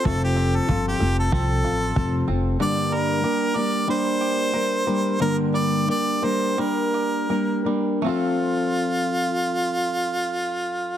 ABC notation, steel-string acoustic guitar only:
X:1
M:4/4
L:1/8
Q:"Swing 16ths" 1/4=90
K:F
V:1 name="Steel-string acoustic guitar"
[F,CFA]2 [F,CFA] [CFA] [F,CFA]2 [F,CFA] [CFA] | [G,,D,G,B,DB]2 [G,B,DB] [G,B,DB] [G,B,DB]2 [G,B,DB] [G,B,DB] | [G,,D,G,B,DB]2 [G,B,DB] [G,B,DB] [G,B,DB]2 [G,B,DB] [G,B,DB] | [F,CFA]8 |]